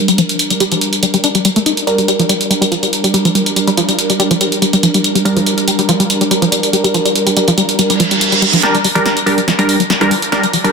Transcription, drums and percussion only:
0.08 closed hi-hat
0.18 closed hi-hat
0.29 closed hi-hat
0.39 closed hi-hat
0.50 closed hi-hat
0.60 closed hi-hat
0.72 closed hi-hat
0.81 closed hi-hat
0.93 closed hi-hat
1.03 closed hi-hat
1.14 closed hi-hat
1.24 closed hi-hat
1.35 closed hi-hat
1.45 closed hi-hat
1.56 closed hi-hat
1.66 closed hi-hat
1.77 closed hi-hat
1.87 closed hi-hat
1.98 closed hi-hat
2.08 closed hi-hat
2.20 closed hi-hat
2.29 closed hi-hat
2.41 closed hi-hat
2.51 closed hi-hat
2.62 closed hi-hat
2.72 closed hi-hat
2.83 closed hi-hat
2.93 closed hi-hat
3.04 closed hi-hat
3.14 closed hi-hat
3.25 closed hi-hat
3.35 closed hi-hat
3.46 closed hi-hat
3.56 closed hi-hat
3.67 closed hi-hat
3.77 closed hi-hat
3.89 closed hi-hat
3.99 closed hi-hat
4.10 closed hi-hat
4.20 closed hi-hat
4.31 closed hi-hat
4.41 closed hi-hat
4.52 closed hi-hat
4.62 closed hi-hat
4.73 closed hi-hat
4.83 closed hi-hat
4.94 closed hi-hat
5.04 closed hi-hat
5.15 closed hi-hat
5.25 closed hi-hat
5.37 closed hi-hat
5.46 closed hi-hat
5.58 closed hi-hat
5.68 closed hi-hat
5.79 closed hi-hat
5.89 closed hi-hat
6.00 closed hi-hat
6.10 closed hi-hat
6.21 closed hi-hat
6.31 closed hi-hat
6.42 closed hi-hat
6.52 closed hi-hat
6.63 closed hi-hat
6.73 closed hi-hat
6.84 closed hi-hat
6.94 closed hi-hat
7.06 closed hi-hat
7.16 closed hi-hat
7.27 closed hi-hat
7.37 closed hi-hat
7.48 closed hi-hat
7.58 closed hi-hat
7.69 closed hi-hat
7.79 closed hi-hat
7.90 closed hi-hat
8.00 closed hi-hat
8.11 closed hi-hat
8.21 closed hi-hat
8.32 closed hi-hat
8.42 closed hi-hat
8.53 closed hi-hat
8.63 snare, closed hi-hat
8.75 closed hi-hat
8.84 open hi-hat
8.96 closed hi-hat
9.06 snare, closed hi-hat
9.17 closed hi-hat
9.27 open hi-hat
9.38 closed hi-hat
9.48 snare, closed hi-hat
9.59 closed hi-hat
9.69 open hi-hat
9.80 closed hi-hat
9.90 snare, closed hi-hat
10.01 cross-stick, closed hi-hat
10.11 open hi-hat
10.22 closed hi-hat
10.32 snare, closed hi-hat
10.43 closed hi-hat
10.53 open hi-hat
10.65 closed hi-hat

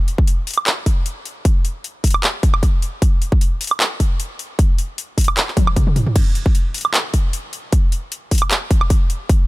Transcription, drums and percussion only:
0.08 closed hi-hat
0.18 kick
0.27 closed hi-hat
0.47 closed hi-hat, open hi-hat
0.54 closed hi-hat
0.58 high woodblock
0.67 clap, closed hi-hat
0.86 kick, closed hi-hat
1.06 closed hi-hat
1.25 closed hi-hat
1.45 kick, closed hi-hat
1.65 closed hi-hat
1.84 closed hi-hat
2.04 kick, closed hi-hat, open hi-hat
2.10 closed hi-hat, high woodblock
2.24 clap, closed hi-hat
2.43 kick, closed hi-hat
2.54 high woodblock
2.63 kick, closed hi-hat
2.82 closed hi-hat
3.02 kick, closed hi-hat
3.22 closed hi-hat
3.32 kick
3.41 closed hi-hat
3.61 closed hi-hat, open hi-hat
3.67 closed hi-hat, high woodblock
3.80 clap, closed hi-hat
4.00 kick, closed hi-hat
4.20 closed hi-hat
4.39 closed hi-hat
4.59 kick, closed hi-hat
4.78 closed hi-hat
4.98 closed hi-hat
5.18 kick, closed hi-hat, open hi-hat
5.24 closed hi-hat, high woodblock
5.37 clap, closed hi-hat
5.48 clap
5.57 kick, closed hi-hat, high tom
5.67 high woodblock
5.76 kick, closed hi-hat, mid tom
5.87 mid tom
5.96 closed hi-hat, mid tom
6.07 mid tom
6.16 kick, closed hi-hat, crash
6.35 closed hi-hat
6.46 kick
6.55 closed hi-hat
6.74 closed hi-hat, open hi-hat
6.81 closed hi-hat
6.85 high woodblock
6.94 clap, closed hi-hat
7.14 kick, closed hi-hat
7.33 closed hi-hat
7.53 closed hi-hat
7.72 kick, closed hi-hat
7.92 closed hi-hat
8.12 closed hi-hat
8.31 kick, closed hi-hat, open hi-hat
8.38 closed hi-hat, high woodblock
8.51 clap, closed hi-hat
8.71 kick, closed hi-hat
8.81 high woodblock
8.90 kick, closed hi-hat
9.10 closed hi-hat
9.29 kick, closed hi-hat

